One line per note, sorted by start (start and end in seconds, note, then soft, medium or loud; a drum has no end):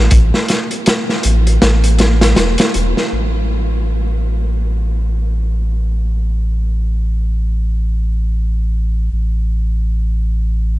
0.11 0.32 A1 loud
0.11 kick loud
0.11 closed hi-hat medium
0.34 snare soft
0.48 snare medium
0.48 closed hi-hat medium
0.71 closed hi-hat soft
0.86 snare loud
0.86 closed hi-hat medium
1.09 snare soft
1.23 1.58 A1 medium
1.23 closed hi-hat medium
1.47 closed hi-hat soft
1.62 2.34 A1 loud
1.62 snare loud
1.62 closed hi-hat medium
1.84 closed hi-hat medium
1.99 snare loud
1.99 closed hi-hat medium
2.21 snare loud
2.21 closed hi-hat medium
2.36 2.57 E1 medium
2.36 snare loud
2.36 closed hi-hat medium
2.58 snare loud
2.58 closed hi-hat medium
2.74 2.94 E1 medium
2.74 closed hi-hat medium
2.97 snare soft
3.13 9.09 A1 medium
9.13 10.79 A1 medium